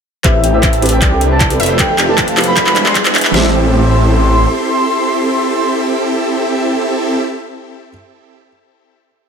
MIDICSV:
0, 0, Header, 1, 9, 480
1, 0, Start_track
1, 0, Key_signature, 0, "minor"
1, 0, Tempo, 387097
1, 304, Time_signature, 4, 2, 24, 8
1, 11518, End_track
2, 0, Start_track
2, 0, Title_t, "Soft synth lead"
2, 0, Program_c, 0, 80
2, 305, Note_on_c, 0, 76, 97
2, 563, Note_off_c, 0, 76, 0
2, 666, Note_on_c, 0, 76, 99
2, 1008, Note_off_c, 0, 76, 0
2, 1147, Note_on_c, 0, 79, 97
2, 1488, Note_off_c, 0, 79, 0
2, 1628, Note_on_c, 0, 81, 92
2, 1798, Note_off_c, 0, 81, 0
2, 2224, Note_on_c, 0, 79, 100
2, 2482, Note_off_c, 0, 79, 0
2, 2590, Note_on_c, 0, 81, 99
2, 2930, Note_off_c, 0, 81, 0
2, 3069, Note_on_c, 0, 83, 99
2, 3409, Note_off_c, 0, 83, 0
2, 3551, Note_on_c, 0, 84, 92
2, 3719, Note_off_c, 0, 84, 0
2, 4144, Note_on_c, 0, 84, 107
2, 8927, Note_off_c, 0, 84, 0
2, 11518, End_track
3, 0, Start_track
3, 0, Title_t, "Synth pluck"
3, 0, Program_c, 1, 84
3, 304, Note_on_c, 1, 76, 92
3, 1217, Note_off_c, 1, 76, 0
3, 1262, Note_on_c, 1, 74, 88
3, 1936, Note_off_c, 1, 74, 0
3, 1982, Note_on_c, 1, 76, 99
3, 3137, Note_off_c, 1, 76, 0
3, 3183, Note_on_c, 1, 76, 88
3, 4097, Note_off_c, 1, 76, 0
3, 4144, Note_on_c, 1, 76, 98
3, 9795, Note_off_c, 1, 76, 0
3, 11518, End_track
4, 0, Start_track
4, 0, Title_t, "Harp"
4, 0, Program_c, 2, 46
4, 303, Note_on_c, 2, 67, 78
4, 420, Note_off_c, 2, 67, 0
4, 425, Note_on_c, 2, 67, 72
4, 538, Note_off_c, 2, 67, 0
4, 543, Note_on_c, 2, 67, 98
4, 667, Note_on_c, 2, 69, 74
4, 783, Note_on_c, 2, 76, 99
4, 906, Note_on_c, 2, 81, 98
4, 1017, Note_off_c, 2, 76, 0
4, 1022, Note_on_c, 2, 76, 74
4, 1141, Note_off_c, 2, 76, 0
4, 1146, Note_on_c, 2, 76, 99
4, 1262, Note_on_c, 2, 72, 78
4, 1380, Note_off_c, 2, 67, 0
4, 1385, Note_on_c, 2, 67, 76
4, 1499, Note_off_c, 2, 76, 0
4, 1504, Note_on_c, 2, 76, 76
4, 1626, Note_on_c, 2, 71, 74
4, 1701, Note_off_c, 2, 72, 0
4, 1743, Note_on_c, 2, 74, 103
4, 1862, Note_off_c, 2, 67, 0
4, 1867, Note_on_c, 2, 67, 76
4, 1978, Note_off_c, 2, 69, 0
4, 1983, Note_on_c, 2, 69, 102
4, 2107, Note_on_c, 2, 72, 99
4, 2181, Note_off_c, 2, 71, 0
4, 2218, Note_off_c, 2, 67, 0
4, 2223, Note_on_c, 2, 67, 82
4, 2341, Note_off_c, 2, 67, 0
4, 2346, Note_on_c, 2, 67, 77
4, 2458, Note_off_c, 2, 67, 0
4, 2463, Note_on_c, 2, 67, 104
4, 2582, Note_off_c, 2, 69, 0
4, 2587, Note_on_c, 2, 69, 78
4, 2698, Note_off_c, 2, 72, 0
4, 2703, Note_off_c, 2, 81, 0
4, 2703, Note_on_c, 2, 72, 102
4, 2826, Note_on_c, 2, 77, 101
4, 2900, Note_off_c, 2, 76, 0
4, 2939, Note_off_c, 2, 72, 0
4, 2944, Note_on_c, 2, 72, 77
4, 3061, Note_off_c, 2, 72, 0
4, 3066, Note_on_c, 2, 72, 103
4, 3180, Note_off_c, 2, 74, 0
4, 3185, Note_on_c, 2, 74, 84
4, 3307, Note_on_c, 2, 68, 79
4, 3382, Note_off_c, 2, 67, 0
4, 3382, Note_off_c, 2, 69, 0
4, 3425, Note_on_c, 2, 80, 76
4, 3548, Note_on_c, 2, 71, 74
4, 3623, Note_off_c, 2, 72, 0
4, 3665, Note_on_c, 2, 76, 107
4, 3739, Note_off_c, 2, 77, 0
4, 3783, Note_off_c, 2, 68, 0
4, 3788, Note_on_c, 2, 68, 78
4, 3899, Note_off_c, 2, 71, 0
4, 3904, Note_on_c, 2, 71, 102
4, 4022, Note_off_c, 2, 76, 0
4, 4027, Note_on_c, 2, 76, 104
4, 4145, Note_on_c, 2, 67, 93
4, 4219, Note_off_c, 2, 68, 0
4, 4219, Note_off_c, 2, 80, 0
4, 5475, Note_off_c, 2, 74, 0
4, 6164, Note_off_c, 2, 76, 0
4, 6445, Note_off_c, 2, 71, 0
4, 7064, Note_off_c, 2, 67, 0
4, 11518, End_track
5, 0, Start_track
5, 0, Title_t, "Supersaw synth"
5, 0, Program_c, 3, 81
5, 304, Note_on_c, 3, 67, 75
5, 304, Note_on_c, 3, 69, 75
5, 304, Note_on_c, 3, 76, 90
5, 305, Note_on_c, 3, 60, 80
5, 305, Note_on_c, 3, 64, 75
5, 1218, Note_off_c, 3, 60, 0
5, 1218, Note_off_c, 3, 64, 0
5, 1218, Note_off_c, 3, 67, 0
5, 1218, Note_off_c, 3, 69, 0
5, 1218, Note_off_c, 3, 76, 0
5, 1263, Note_on_c, 3, 74, 91
5, 1264, Note_on_c, 3, 60, 82
5, 1264, Note_on_c, 3, 64, 76
5, 1264, Note_on_c, 3, 67, 75
5, 1265, Note_on_c, 3, 71, 74
5, 1937, Note_off_c, 3, 74, 0
5, 1938, Note_off_c, 3, 60, 0
5, 1938, Note_off_c, 3, 64, 0
5, 1938, Note_off_c, 3, 67, 0
5, 1938, Note_off_c, 3, 71, 0
5, 1984, Note_on_c, 3, 57, 92
5, 1984, Note_on_c, 3, 67, 86
5, 1984, Note_on_c, 3, 71, 87
5, 1985, Note_on_c, 3, 65, 89
5, 1985, Note_on_c, 3, 76, 107
5, 3138, Note_off_c, 3, 57, 0
5, 3138, Note_off_c, 3, 65, 0
5, 3138, Note_off_c, 3, 67, 0
5, 3138, Note_off_c, 3, 71, 0
5, 3138, Note_off_c, 3, 76, 0
5, 3182, Note_on_c, 3, 76, 89
5, 3183, Note_on_c, 3, 64, 74
5, 3183, Note_on_c, 3, 71, 78
5, 3184, Note_on_c, 3, 56, 82
5, 3184, Note_on_c, 3, 62, 76
5, 4097, Note_off_c, 3, 64, 0
5, 4097, Note_off_c, 3, 71, 0
5, 4097, Note_off_c, 3, 76, 0
5, 4098, Note_off_c, 3, 56, 0
5, 4098, Note_off_c, 3, 62, 0
5, 4145, Note_on_c, 3, 69, 80
5, 4145, Note_on_c, 3, 76, 97
5, 4146, Note_on_c, 3, 60, 91
5, 4146, Note_on_c, 3, 64, 81
5, 4146, Note_on_c, 3, 67, 78
5, 8927, Note_off_c, 3, 64, 0
5, 8927, Note_off_c, 3, 69, 0
5, 8927, Note_off_c, 3, 76, 0
5, 8928, Note_off_c, 3, 60, 0
5, 8928, Note_off_c, 3, 67, 0
5, 11518, End_track
6, 0, Start_track
6, 0, Title_t, "Felt piano"
6, 0, Program_c, 4, 0
6, 290, Note_on_c, 4, 60, 84
6, 299, Note_on_c, 4, 64, 77
6, 307, Note_on_c, 4, 67, 76
6, 315, Note_on_c, 4, 71, 93
6, 439, Note_off_c, 4, 60, 0
6, 443, Note_off_c, 4, 64, 0
6, 447, Note_off_c, 4, 67, 0
6, 451, Note_off_c, 4, 71, 0
6, 654, Note_on_c, 4, 60, 72
6, 662, Note_on_c, 4, 64, 68
6, 670, Note_on_c, 4, 67, 69
6, 678, Note_on_c, 4, 71, 81
6, 797, Note_off_c, 4, 60, 0
6, 801, Note_off_c, 4, 64, 0
6, 805, Note_off_c, 4, 67, 0
6, 809, Note_off_c, 4, 71, 0
6, 1010, Note_on_c, 4, 60, 92
6, 1018, Note_on_c, 4, 64, 84
6, 1027, Note_on_c, 4, 67, 84
6, 1035, Note_on_c, 4, 71, 103
6, 1240, Note_off_c, 4, 60, 0
6, 1244, Note_off_c, 4, 64, 0
6, 1248, Note_off_c, 4, 67, 0
6, 1252, Note_off_c, 4, 71, 0
6, 1374, Note_on_c, 4, 62, 83
6, 1382, Note_on_c, 4, 64, 77
6, 1390, Note_on_c, 4, 67, 76
6, 1399, Note_on_c, 4, 69, 88
6, 1517, Note_off_c, 4, 62, 0
6, 1521, Note_off_c, 4, 64, 0
6, 1525, Note_off_c, 4, 67, 0
6, 1529, Note_off_c, 4, 69, 0
6, 1854, Note_on_c, 4, 59, 73
6, 1861, Note_on_c, 4, 64, 68
6, 1870, Note_on_c, 4, 67, 69
6, 1878, Note_on_c, 4, 69, 81
6, 2082, Note_off_c, 4, 59, 0
6, 2086, Note_off_c, 4, 64, 0
6, 2090, Note_off_c, 4, 67, 0
6, 2094, Note_off_c, 4, 69, 0
6, 2210, Note_on_c, 4, 59, 85
6, 2218, Note_on_c, 4, 64, 83
6, 2226, Note_on_c, 4, 67, 80
6, 2235, Note_on_c, 4, 69, 97
6, 2359, Note_off_c, 4, 59, 0
6, 2363, Note_off_c, 4, 64, 0
6, 2367, Note_off_c, 4, 67, 0
6, 2371, Note_off_c, 4, 69, 0
6, 2575, Note_on_c, 4, 59, 77
6, 2584, Note_on_c, 4, 64, 69
6, 2592, Note_on_c, 4, 67, 69
6, 2600, Note_on_c, 4, 69, 86
6, 2717, Note_off_c, 4, 59, 0
6, 2722, Note_off_c, 4, 64, 0
6, 2726, Note_off_c, 4, 67, 0
6, 2730, Note_off_c, 4, 69, 0
6, 2931, Note_on_c, 4, 59, 94
6, 2941, Note_on_c, 4, 64, 89
6, 2949, Note_on_c, 4, 67, 88
6, 2957, Note_on_c, 4, 69, 104
6, 3160, Note_off_c, 4, 59, 0
6, 3165, Note_off_c, 4, 64, 0
6, 3169, Note_off_c, 4, 67, 0
6, 3173, Note_off_c, 4, 69, 0
6, 3296, Note_on_c, 4, 62, 84
6, 3303, Note_on_c, 4, 64, 78
6, 3312, Note_on_c, 4, 68, 76
6, 3320, Note_on_c, 4, 71, 93
6, 3438, Note_off_c, 4, 62, 0
6, 3441, Note_off_c, 4, 64, 0
6, 3446, Note_off_c, 4, 68, 0
6, 3450, Note_off_c, 4, 71, 0
6, 3776, Note_on_c, 4, 62, 77
6, 3784, Note_on_c, 4, 64, 72
6, 3792, Note_on_c, 4, 68, 71
6, 3801, Note_on_c, 4, 71, 85
6, 4003, Note_off_c, 4, 62, 0
6, 4008, Note_off_c, 4, 64, 0
6, 4012, Note_off_c, 4, 68, 0
6, 4016, Note_off_c, 4, 71, 0
6, 4108, Note_on_c, 4, 60, 89
6, 4133, Note_on_c, 4, 64, 81
6, 4158, Note_on_c, 4, 67, 78
6, 4182, Note_on_c, 4, 72, 96
6, 9776, Note_off_c, 4, 60, 0
6, 9789, Note_off_c, 4, 64, 0
6, 9801, Note_off_c, 4, 67, 0
6, 9814, Note_off_c, 4, 72, 0
6, 11518, End_track
7, 0, Start_track
7, 0, Title_t, "Detuned saw bass"
7, 0, Program_c, 5, 39
7, 303, Note_on_c, 5, 33, 95
7, 1264, Note_on_c, 5, 36, 95
7, 1282, Note_off_c, 5, 33, 0
7, 1961, Note_off_c, 5, 36, 0
7, 1983, Note_on_c, 5, 29, 97
7, 3160, Note_off_c, 5, 29, 0
7, 3184, Note_on_c, 5, 28, 96
7, 4121, Note_off_c, 5, 28, 0
7, 4145, Note_on_c, 5, 33, 99
7, 5535, Note_off_c, 5, 33, 0
7, 11518, End_track
8, 0, Start_track
8, 0, Title_t, "Riser"
8, 0, Program_c, 6, 103
8, 303, Note_on_c, 6, 60, 79
8, 4144, Note_off_c, 6, 60, 0
8, 11518, End_track
9, 0, Start_track
9, 0, Title_t, "Drums"
9, 302, Note_on_c, 9, 39, 49
9, 302, Note_on_c, 9, 42, 83
9, 303, Note_on_c, 9, 36, 99
9, 426, Note_off_c, 9, 39, 0
9, 426, Note_off_c, 9, 42, 0
9, 427, Note_off_c, 9, 36, 0
9, 541, Note_on_c, 9, 42, 66
9, 665, Note_off_c, 9, 42, 0
9, 782, Note_on_c, 9, 39, 52
9, 782, Note_on_c, 9, 42, 81
9, 783, Note_on_c, 9, 36, 94
9, 905, Note_off_c, 9, 42, 0
9, 905, Note_on_c, 9, 42, 61
9, 906, Note_off_c, 9, 39, 0
9, 907, Note_off_c, 9, 36, 0
9, 1022, Note_off_c, 9, 42, 0
9, 1022, Note_on_c, 9, 42, 52
9, 1063, Note_off_c, 9, 42, 0
9, 1063, Note_on_c, 9, 42, 66
9, 1102, Note_off_c, 9, 42, 0
9, 1102, Note_on_c, 9, 42, 83
9, 1226, Note_off_c, 9, 42, 0
9, 1262, Note_on_c, 9, 39, 57
9, 1262, Note_on_c, 9, 42, 81
9, 1263, Note_on_c, 9, 36, 98
9, 1386, Note_off_c, 9, 39, 0
9, 1386, Note_off_c, 9, 42, 0
9, 1387, Note_off_c, 9, 36, 0
9, 1502, Note_on_c, 9, 42, 70
9, 1626, Note_off_c, 9, 42, 0
9, 1742, Note_on_c, 9, 39, 63
9, 1742, Note_on_c, 9, 42, 79
9, 1743, Note_on_c, 9, 36, 97
9, 1865, Note_off_c, 9, 42, 0
9, 1865, Note_on_c, 9, 42, 65
9, 1866, Note_off_c, 9, 39, 0
9, 1867, Note_off_c, 9, 36, 0
9, 1981, Note_off_c, 9, 42, 0
9, 1981, Note_on_c, 9, 42, 50
9, 2022, Note_off_c, 9, 42, 0
9, 2022, Note_on_c, 9, 42, 66
9, 2061, Note_off_c, 9, 42, 0
9, 2061, Note_on_c, 9, 42, 83
9, 2185, Note_off_c, 9, 42, 0
9, 2220, Note_on_c, 9, 39, 75
9, 2220, Note_on_c, 9, 42, 85
9, 2223, Note_on_c, 9, 36, 102
9, 2344, Note_off_c, 9, 39, 0
9, 2344, Note_off_c, 9, 42, 0
9, 2347, Note_off_c, 9, 36, 0
9, 2461, Note_on_c, 9, 39, 78
9, 2461, Note_on_c, 9, 42, 69
9, 2585, Note_off_c, 9, 39, 0
9, 2585, Note_off_c, 9, 42, 0
9, 2701, Note_on_c, 9, 39, 83
9, 2701, Note_on_c, 9, 42, 82
9, 2703, Note_on_c, 9, 36, 96
9, 2825, Note_off_c, 9, 39, 0
9, 2825, Note_off_c, 9, 42, 0
9, 2825, Note_on_c, 9, 42, 65
9, 2827, Note_off_c, 9, 36, 0
9, 2941, Note_off_c, 9, 42, 0
9, 2941, Note_on_c, 9, 39, 86
9, 2941, Note_on_c, 9, 42, 51
9, 2983, Note_off_c, 9, 42, 0
9, 2983, Note_on_c, 9, 42, 70
9, 3021, Note_off_c, 9, 42, 0
9, 3021, Note_on_c, 9, 42, 84
9, 3065, Note_off_c, 9, 39, 0
9, 3145, Note_off_c, 9, 42, 0
9, 3182, Note_on_c, 9, 39, 93
9, 3182, Note_on_c, 9, 42, 85
9, 3184, Note_on_c, 9, 36, 101
9, 3305, Note_off_c, 9, 39, 0
9, 3305, Note_on_c, 9, 39, 85
9, 3306, Note_off_c, 9, 42, 0
9, 3308, Note_off_c, 9, 36, 0
9, 3422, Note_off_c, 9, 39, 0
9, 3422, Note_on_c, 9, 39, 98
9, 3422, Note_on_c, 9, 42, 70
9, 3546, Note_off_c, 9, 39, 0
9, 3546, Note_off_c, 9, 42, 0
9, 3546, Note_on_c, 9, 39, 91
9, 3663, Note_off_c, 9, 39, 0
9, 3663, Note_on_c, 9, 39, 97
9, 3663, Note_on_c, 9, 42, 84
9, 3664, Note_on_c, 9, 36, 98
9, 3787, Note_off_c, 9, 39, 0
9, 3787, Note_off_c, 9, 42, 0
9, 3787, Note_on_c, 9, 39, 94
9, 3787, Note_on_c, 9, 42, 67
9, 3788, Note_off_c, 9, 36, 0
9, 3905, Note_off_c, 9, 39, 0
9, 3905, Note_off_c, 9, 42, 0
9, 3905, Note_on_c, 9, 39, 109
9, 3905, Note_on_c, 9, 42, 52
9, 3946, Note_off_c, 9, 42, 0
9, 3946, Note_on_c, 9, 42, 68
9, 3985, Note_off_c, 9, 42, 0
9, 3985, Note_on_c, 9, 42, 86
9, 4029, Note_off_c, 9, 39, 0
9, 4029, Note_on_c, 9, 39, 99
9, 4109, Note_off_c, 9, 42, 0
9, 4144, Note_on_c, 9, 38, 111
9, 4153, Note_off_c, 9, 39, 0
9, 4268, Note_off_c, 9, 38, 0
9, 11518, End_track
0, 0, End_of_file